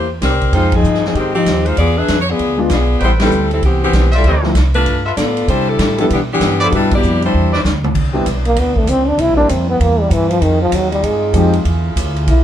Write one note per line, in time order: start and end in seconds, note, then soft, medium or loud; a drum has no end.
0.00 0.21 E2 medium
0.22 0.52 C2 medium
0.22 0.51 C4 medium
0.22 0.51 G4 medium
0.22 0.51 A#4 medium
0.22 0.51 D5 medium
0.22 snare medium
0.22 hi-hat pedal medium
0.22 ride medium
0.41 kick soft
0.41 ride soft
0.52 0.83 F2 medium
0.52 0.72 G#3 medium
0.52 1.39 C4 soft
0.52 1.39 D#4 soft
0.52 0.72 D#4 medium
0.52 0.72 F4 medium
0.52 1.39 G#4 soft
0.52 0.72 C5 medium
0.52 1.40 G5 medium
0.52 ride medium
0.72 1.05 F3 medium
0.72 1.05 C4 medium
0.72 1.05 D#4 medium
0.72 kick medium
0.72 ride medium
0.76 1.05 G#4 medium
0.83 1.14 G2 medium
0.83 hi-hat pedal soft
0.94 snare soft
1.05 1.16 F3 medium
1.05 1.15 C4 medium
1.05 1.16 D#4 medium
1.05 1.16 G#4 medium
1.05 snare soft
1.15 1.45 G#2 medium
1.15 1.34 D#3 medium
1.15 1.34 G#3 medium
1.15 1.34 C4 medium
1.15 1.34 G4 medium
1.15 ride soft
1.35 1.64 F3 medium
1.35 1.64 C4 medium
1.35 1.64 D#4 medium
1.35 1.64 G4 medium
1.45 1.76 D#2 medium
1.45 snare medium
1.45 hi-hat pedal medium
1.45 ride medium
1.66 1.78 G#3 medium
1.66 1.78 D#4 medium
1.66 1.77 F4 medium
1.66 1.77 C5 medium
1.66 ride soft
1.77 2.07 E2 medium
1.77 1.96 B3 medium
1.77 1.96 F4 medium
1.77 1.96 G#4 medium
1.77 1.96 D5 loud
1.77 ride medium
1.97 2.19 D4 medium
1.97 2.19 G#4 medium
1.97 2.19 B4 medium
1.97 2.19 E5 medium
2.08 2.38 F2 medium
2.08 snare medium
2.08 hi-hat pedal medium
2.08 ride medium
2.21 2.28 C#5 medium
2.30 2.60 B3 medium
2.30 2.60 F4 medium
2.30 2.59 G#4 medium
2.30 2.59 D5 loud
2.39 2.69 D2 medium
2.39 ride soft
2.57 2.68 G#3 medium
2.57 2.68 B3 medium
2.57 2.69 D4 medium
2.57 2.69 F4 medium
2.69 3.00 B1 medium
2.69 3.00 B3 medium
2.69 3.00 F4 medium
2.69 3.00 G#4 medium
2.69 snare medium
2.69 hi-hat pedal medium
2.69 ride medium
2.74 3.01 D5 medium
3.00 3.30 A1 medium
3.00 3.47 A4 medium
3.00 3.47 B4 medium
3.00 3.47 C5 medium
3.00 3.47 G5 medium
3.00 ride soft
3.04 3.12 G3 medium
3.04 3.12 B3 medium
3.04 3.12 E4 medium
3.04 3.12 C5 medium
3.19 3.30 G3 medium
3.19 3.50 G3 medium
3.19 3.30 B3 soft
3.19 3.31 C4 soft
3.19 3.50 C4 medium
3.19 3.31 E4 medium
3.19 snare medium
3.19 ride medium
3.24 3.51 E4 medium
3.24 3.51 A4 medium
3.31 3.61 D2 medium
3.31 hi-hat pedal soft
3.51 3.63 G3 medium
3.51 3.63 C4 medium
3.51 3.63 E4 medium
3.51 3.63 A4 medium
3.51 ride soft
3.61 3.92 C2 medium
3.61 3.82 E3 medium
3.61 3.82 B3 medium
3.61 3.82 C4 medium
3.61 3.82 G4 medium
3.61 ride soft
3.84 4.12 E3 medium
3.84 4.12 B3 medium
3.84 4.12 C4 medium
3.84 4.12 G4 medium
3.93 4.23 B1 medium
3.93 snare medium
3.93 hi-hat pedal soft
3.93 ride medium
4.12 4.53 F4 medium
4.12 4.52 C5 medium
4.12 4.52 D5 medium
4.12 4.52 E5 loud
4.12 ride soft
4.17 4.26 G3 medium
4.17 4.26 C4 medium
4.17 4.26 E4 medium
4.17 4.26 A4 medium
4.24 4.53 D2 medium
4.24 4.35 E3 medium
4.24 4.35 A3 medium
4.24 4.35 C4 medium
4.24 4.35 G4 medium
4.24 ride soft
4.42 4.53 F3 soft
4.42 4.54 A3 soft
4.42 4.54 C4 soft
4.42 4.54 E4 medium
4.42 snare soft
4.54 4.85 C2 medium
4.54 snare medium
4.54 hi-hat pedal medium
4.54 ride medium
4.74 5.04 A3 medium
4.74 5.04 D4 medium
4.74 5.04 F4 medium
4.74 5.04 B4 loud
4.74 ride soft
4.85 5.16 G2 medium
4.85 ride medium
5.05 5.13 F4 medium
5.05 5.13 A4 medium
5.05 5.13 B4 medium
5.05 5.13 E5 medium
5.17 5.47 A2 medium
5.17 5.46 B3 medium
5.17 5.46 F4 medium
5.17 5.46 A4 medium
5.17 5.46 D5 medium
5.17 snare medium
5.17 hi-hat pedal medium
5.17 ride medium
5.37 ride soft
5.48 5.78 C3 medium
5.48 5.68 G3 medium
5.48 5.68 D4 medium
5.48 5.68 E4 medium
5.48 5.68 C5 loud
5.48 ride medium
5.69 5.99 G3 medium
5.69 5.99 D4 medium
5.69 5.99 E4 medium
5.69 5.99 A4 medium
5.78 6.09 A2 medium
5.78 snare medium
5.78 hi-hat pedal medium
5.78 ride medium
5.98 6.05 F3 medium
5.98 6.09 G3 medium
5.98 6.09 B3 medium
5.98 6.06 B3 medium
5.98 6.09 D4 soft
5.98 6.05 D4 medium
5.98 6.10 E4 medium
5.98 6.05 A4 medium
5.98 ride soft
6.10 6.39 B2 medium
6.10 6.21 E3 medium
6.10 6.21 B3 medium
6.10 6.21 D4 medium
6.10 6.21 G4 medium
6.10 ride medium
6.33 6.60 E3 medium
6.33 6.60 B3 medium
6.33 6.60 D4 medium
6.33 6.60 G4 loud
6.40 6.70 G2 medium
6.40 snare medium
6.40 hi-hat pedal soft
6.40 ride medium
6.60 6.73 F3 medium
6.60 6.73 B3 medium
6.60 6.73 D4 medium
6.60 6.68 E4 medium
6.60 6.73 A4 medium
6.60 6.68 B4 medium
6.60 6.68 C5 medium
6.60 6.68 D5 loud
6.60 ride soft
6.70 7.02 G2 medium
6.70 7.57 B2 soft
6.70 7.56 G3 soft
6.70 7.57 D4 soft
6.70 7.58 E4 medium
6.70 ride medium
6.75 6.92 G3 medium
6.75 6.91 D4 medium
6.75 6.91 E4 medium
6.75 6.91 B4 medium
6.91 7.23 B3 medium
6.91 7.24 E4 medium
6.91 7.24 G4 medium
6.91 7.24 D5 loud
6.91 kick medium
6.91 ride medium
7.03 7.33 F2 medium
7.03 hi-hat pedal medium
7.22 7.52 G3 medium
7.22 7.52 D4 medium
7.22 7.52 E4 medium
7.22 7.52 C5 medium
7.22 ride soft
7.34 7.63 E2 medium
7.53 7.60 E4 medium
7.53 7.60 B4 medium
7.53 7.61 C5 medium
7.53 7.60 D5 medium
7.53 snare medium
7.64 7.94 D2 loud
7.64 snare medium
7.64 hi-hat pedal medium
7.84 mid tom medium
7.95 8.25 C2 medium
7.95 9.17 E3 medium
7.95 9.17 B3 medium
7.95 11.61 C4 medium
7.95 9.17 D4 medium
7.95 kick medium
7.95 crash medium
8.13 8.24 G3 medium
8.13 8.24 B3 soft
8.13 8.24 C4 soft
8.13 8.25 D4 medium
8.13 8.25 E4 medium
8.26 8.55 B1 medium
8.26 hi-hat pedal medium
8.26 ride medium
8.45 8.60 A#3 medium
8.45 ride soft
8.56 8.86 D2 medium
8.56 8.80 B3 medium
8.56 ride medium
8.76 8.91 A3 medium
8.76 kick medium
8.87 9.17 C#2 medium
8.87 9.10 C4 loud
8.87 hi-hat pedal medium
8.87 ride medium
9.08 9.22 D4 medium
9.17 9.28 C2 medium
9.17 10.40 G3 medium
9.17 10.40 A#3 medium
9.17 10.40 E4 medium
9.17 9.37 E4 loud
9.17 ride medium
9.28 9.38 A#1 medium
9.36 9.48 G1 medium
9.36 9.47 G3 medium
9.36 9.47 A#3 medium
9.36 9.48 C4 medium
9.36 9.48 D4 medium
9.36 9.51 D4 loud
9.36 9.48 E4 medium
9.49 9.79 F2 medium
9.49 9.69 C4 medium
9.49 hi-hat pedal medium
9.49 ride medium
9.70 9.83 B3 medium
9.80 10.10 E2 medium
9.80 10.02 A#3 medium
9.80 ride medium
10.01 10.15 G3 medium
10.10 10.41 G2 loud
10.10 10.32 E3 medium
10.10 hi-hat pedal medium
10.10 ride medium
10.31 10.44 F3 medium
10.31 ride soft
10.40 10.71 F2 medium
10.40 10.61 D#3 medium
10.40 11.63 D#4 medium
10.40 12.44 F4 medium
10.40 12.44 G#4 medium
10.40 ride medium
10.62 10.76 F3 medium
10.72 11.02 D#2 medium
10.72 10.92 F#3 medium
10.72 hi-hat pedal medium
10.72 ride medium
10.92 11.07 G3 medium
10.92 ride soft
11.02 11.32 G2 medium
11.02 11.55 G#3 medium
11.02 ride medium
11.33 11.64 F2 medium
11.33 11.51 F3 medium
11.33 11.52 G#3 soft
11.33 11.52 C4 medium
11.33 11.52 D#4 medium
11.33 11.52 G4 medium
11.33 hi-hat pedal medium
11.33 ride medium
11.53 ride soft
11.65 11.95 E2 medium
11.65 12.44 D3 medium
11.65 12.44 E4 medium
11.65 ride medium
11.96 12.26 D2 medium
11.96 hi-hat pedal medium
11.96 ride medium
12.16 ride soft
12.27 12.44 B1 medium
12.27 12.44 E4 medium
12.27 ride medium